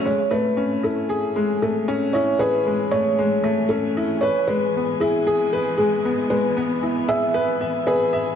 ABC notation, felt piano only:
X:1
M:4/4
L:1/8
Q:1/4=115
K:A
V:1 name="Felt piano"
c B2 A3 A2 | c B2 c3 A2 | c B2 G3 G2 | B3 e3 B2 |]